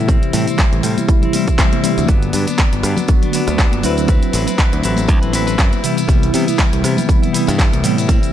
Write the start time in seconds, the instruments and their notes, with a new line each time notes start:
Already playing: fingered electric bass A2
0.08 tine electric piano C3 E3 G3 A3 E4, clean electric guitar G3 C4 E4, kick, closed hi-hat, tambourine, high conga, shaker
0.22 closed hi-hat, tambourine
0.33 fingered electric bass A2, clean electric guitar G3 C4 E4, open hi-hat, shaker
0.47 clean electric guitar C4 E4, closed hi-hat, tambourine, high conga, shaker
0.58 clean electric guitar G3 C4 E4, kick, clap, closed hi-hat, shaker
0.72 fingered electric bass A1, closed hi-hat, tambourine
0.83 fingered electric bass A2, clean electric guitar G3 C4 E4, open hi-hat, shaker
0.97 closed hi-hat, tambourine, high conga, shaker
1.08 tine electric piano C3 E3 G3 A3 E4, kick, closed hi-hat, tambourine, shaker
1.22 clean electric guitar C4 E4, closed hi-hat, tambourine, low conga
1.33 clean electric guitar G3 C4 E4, open hi-hat, high conga, shaker
1.47 kick, closed hi-hat, tambourine, shaker
1.58 clean electric guitar G3 C4 E4, kick, clap, closed hi-hat, tambourine, shaker
1.71 closed hi-hat, tambourine, high conga
1.83 tine electric piano C3 E3 G3 A3 E4, clean electric guitar G3 C4 E4, muted fingered electric bass stroke, open hi-hat, shaker
1.98 fingered electric bass D2, closed hi-hat, tambourine, shaker
2.07 fingered electric bass G1, tine electric piano D3 B3, clean electric guitar F#3 B3 D4, kick, closed hi-hat, tambourine, high conga, shaker
2.22 closed hi-hat, tambourine
2.33 fingered electric bass G2, clean electric guitar F#3 B3 D4, open hi-hat, shaker
2.47 clean electric guitar B3 D4, closed hi-hat, tambourine, high conga, shaker
2.58 clean electric guitar F#3 B3, kick, clap, closed hi-hat, tambourine, shaker
2.72 fingered electric bass G1, closed hi-hat, tambourine
2.83 fingered electric bass G2, clean electric guitar F#3 B3 D4, cross-stick, open hi-hat, shaker
2.96 closed hi-hat, tambourine, high conga, low conga, shaker
3.08 tine electric piano D3 F#3 B3 F#4, kick, closed hi-hat, tambourine, shaker
3.22 clean electric guitar B3 D4, closed hi-hat, tambourine, low conga
3.32 clean electric guitar F#3 B3 D4, open hi-hat, high conga, shaker
3.47 fingered electric bass D2, clean electric guitar B3 D4, cross-stick, closed hi-hat, tambourine, shaker
3.58 clean electric guitar F#3 B3 D4, kick, clap, closed hi-hat, tambourine, shaker
3.72 fingered electric bass G1, closed hi-hat, tambourine, high conga
3.83 fingered electric bass D2, clean electric guitar F#3 C4 E4 B4, tine electric piano F#3 C4 D4 E4 B4, open hi-hat, shaker
3.97 closed hi-hat, tambourine, shaker
4.08 clean electric guitar F#3 C4 E4 B4, tine electric piano F#3 C4 D4 E4 B4, kick, closed hi-hat, tambourine, high conga, shaker
4.23 closed hi-hat, tambourine
4.33 fingered electric bass A1, clean electric guitar F#3 C4 E4 B4, open hi-hat, shaker
4.47 clean electric guitar C4 E4 B4, closed hi-hat, tambourine, high conga, shaker
4.58 clean electric guitar F#3 C4 E4 B4, kick, clap, closed hi-hat, tambourine, shaker
4.72 fingered electric bass D2, closed hi-hat, tambourine
4.82 fingered electric bass A1, clean electric guitar F#3 C4 E4 B4, open hi-hat, shaker
4.96 closed hi-hat, tambourine, high conga, shaker
5.07 fingered electric bass D2, tine electric piano F#3 C4 D4 E4 B4, kick, closed hi-hat, tambourine, shaker
5.22 fingered electric bass A1, clean electric guitar C4 E4 B4, closed hi-hat, tambourine
5.32 clean electric guitar F#3 C4 E4 B4, open hi-hat, high conga, shaker
5.47 clean electric guitar C4 E4 B4, closed hi-hat, tambourine, shaker
5.58 fingered electric bass F#2, clean electric guitar F#3 C4 B4, kick, clap, closed hi-hat, shaker
5.72 closed hi-hat, tambourine, high conga
5.83 tine electric piano C3 E3 G3 B3 E4, clean electric guitar G3 B3 E4, open hi-hat, shaker
5.97 clean electric guitar B3 E4, closed hi-hat, tambourine, shaker
6.08 fingered electric bass C2, tine electric piano C3 E3 G3 B3 E4, clean electric guitar G3 B3 E4, kick, closed hi-hat, tambourine, high conga, shaker
6.23 closed hi-hat, tambourine
6.33 fingered electric bass C3, clean electric guitar G3 B3 E4, open hi-hat, shaker
6.46 clean electric guitar B3 E4, closed hi-hat, tambourine, high conga, shaker
6.58 clean electric guitar G3 B3 E4, kick, clap, closed hi-hat, shaker
6.73 fingered electric bass C2, closed hi-hat, tambourine
6.83 fingered electric bass C3, clean electric guitar G3 B3 E4, cross-stick, open hi-hat, shaker
6.97 closed hi-hat, tambourine, high conga, low conga, shaker
7.08 tine electric piano C3 E3 G3 B3 E4, kick, closed hi-hat, tambourine, shaker
7.22 clean electric guitar B3 E4, closed hi-hat, tambourine, low conga
7.33 clean electric guitar G3 B3 E4, open hi-hat, high conga, shaker
7.47 fingered electric bass G2, clean electric guitar B3 E4, cross-stick, closed hi-hat, tambourine, shaker
7.58 clean electric guitar G3 B3 E4, kick, clap, closed hi-hat, tambourine, shaker
7.73 fingered electric bass C2, closed hi-hat, tambourine, high conga
7.83 fingered electric bass A2, tine electric piano C3 E3 G3 B3 E4, clean electric guitar G3 B3 E4, open hi-hat, shaker
7.97 clean electric guitar B3 E4, closed hi-hat, tambourine, shaker
8.08 tine electric piano C3, clean electric guitar G3 C4 E4, kick, closed hi-hat, tambourine, high conga, shaker
8.23 closed hi-hat, tambourine, shaker